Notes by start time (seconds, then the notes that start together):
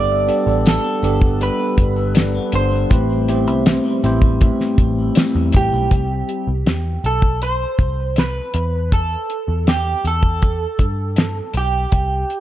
Already playing: G1 G3 B3 D4 G4 A4 D5
0.10 B3
0.27 B3 D4 G4 A4, closed hi-hat
0.47 A1 A4
0.65 D4 A4, snare, closed hi-hat, tambourine
0.84 B3
1.03 G1 B3 D4 G4 A4, closed hi-hat
1.21 B3, kick
1.41 G3 A4 B4, closed hi-hat
1.60 B3
1.77 G1 D4, kick, closed hi-hat
1.96 A4
2.15 D4, snare, closed hi-hat, tambourine
2.35 B3
2.52 G1 D4 C5, closed hi-hat
2.71 B3
2.90 A1 A2 C4 E4 G4 B4, kick, closed hi-hat
3.10 G3
3.28 B3 C4 E4 G4 C5, closed hi-hat
3.34 C4
3.47 C2 E4, closed hi-hat
3.66 C4, snare, closed hi-hat, tambourine
3.85 G3
4.03 A1 C4 E4 G4 C5, closed hi-hat
4.22 G3, kick
4.41 A2 E4, kick, closed hi-hat
4.60 G3, snare
4.78 A1 C4, kick, closed hi-hat
4.98 E4
5.15 C4, snare, closed hi-hat, tambourine
5.35 E2 G3
5.52 A1 C4, kick, closed hi-hat
5.57 G4
5.73 B1 G3
5.91 C2, kick, closed hi-hat
6.29 closed hi-hat
6.47 C2
6.66 E2, snare, closed hi-hat
7.04 B1 A4, closed hi-hat
7.22 kick
7.42 C5, closed hi-hat
7.79 C2, kick, closed hi-hat
8.16 B4, snare, closed hi-hat
8.54 E2, closed hi-hat
8.92 A4, kick, closed hi-hat
9.30 closed hi-hat
9.48 E2
9.67 G4, snare, closed hi-hat
10.04 E2 A4, closed hi-hat
10.23 kick
10.42 kick, closed hi-hat
10.79 G2, kick, closed hi-hat
11.16 snare, closed hi-hat
11.54 B1 G4, closed hi-hat
11.92 C2, kick, closed hi-hat
12.30 closed hi-hat